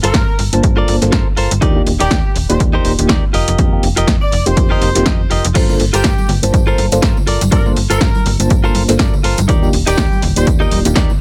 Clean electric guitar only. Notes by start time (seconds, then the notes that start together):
0.03 F4 A4 A#4 C5
0.38 muted clean electric guitar stroke
0.63 muted clean electric guitar stroke
0.77 F4 A4 A#4 D5
1.12 F4 A4 A#4 C5
1.37 F4 A4 A#4 C5
1.61 D#4 G4 A#4 D5
2.00 D#4 G4 A#4 D5
2.35 muted clean electric guitar stroke
2.59 muted clean electric guitar stroke
2.73 D#4 G4 A#4 C5
3.09 D#4 G4 A#4 D5
3.33 F4 G4 A#4 D#5
3.96 F4 G4 A#4 D#5
4.32 muted clean electric guitar stroke
4.56 muted clean electric guitar stroke
4.70 F4 G4 A#4 D#5
5.05 F4 G4 A#4 D#5
5.30 F4 G4 A#4 D#5
5.54 F4 A4 A#4 C5
5.93 F4 A4 A#4 C5
6.28 muted clean electric guitar stroke
6.53 muted clean electric guitar stroke
6.67 F4 A4 A#4 C5
7.02 F4 A4 A#4 C5
7.27 F4 A4 A#4 D5
7.51 F4 A4 A#4 D5
7.90 F4 A4 A#4 C5
8.25 muted clean electric guitar stroke
8.50 muted clean electric guitar stroke
8.64 F4 A4 A#4 C5
8.99 F4 A4 A#4 D5
9.23 F4 A4 A#4 C5
9.48 D#4 G4 A#4 D5
9.86 D#4 G4 A#4 D5
10.22 muted clean electric guitar stroke
10.46 muted clean electric guitar stroke
10.60 D#4 G4 A#4 D#5
10.95 D#4 G4 A#4 D5